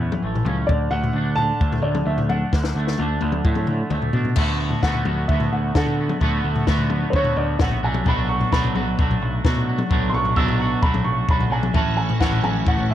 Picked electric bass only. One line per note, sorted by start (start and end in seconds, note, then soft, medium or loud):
0.00 0.14 E2 loud
0.22 0.41 A1 medium
0.45 0.64 C#2 medium
0.69 0.87 D2 medium
0.91 1.10 D2 medium
1.13 1.51 D2 medium
1.61 1.79 D2 medium
1.82 2.01 D2 medium
2.06 2.43 D2 medium
2.53 2.71 D2 medium
2.75 2.94 D2 medium
2.99 3.17 D2 medium
3.22 3.40 D2 medium
3.45 3.82 A2 loud
3.90 4.09 D2 medium
4.13 4.32 B2 medium
4.36 4.73 D2 medium
4.83 5.01 D2 medium
5.05 5.24 D2 medium
5.29 5.47 D2 medium
5.52 5.71 D2 medium
5.75 6.12 D3 medium
6.21 6.40 D2 medium
6.44 6.63 D2 medium
6.67 7.04 D2 medium
7.13 7.32 D2 medium
7.36 7.55 D2 medium
7.60 7.82 A#1 medium
7.82 8.01 B1 medium
8.06 8.43 B1 medium
8.52 8.71 B1 medium
8.75 8.93 B1 medium
8.99 9.17 B1 medium
9.22 9.40 B1 medium
9.45 9.81 B2 medium
9.91 10.09 B1 loud
10.13 10.32 B1 medium
10.37 10.73 B1 medium
10.82 11.01 B1 loud
11.04 11.23 B1 medium
11.29 11.47 B1 medium
11.50 11.69 B1 medium
11.74 12.11 A1 medium
12.21 12.39 A1 medium
12.43 12.61 A1 medium
12.67 12.85 A1 medium
12.89 12.94 A1 medium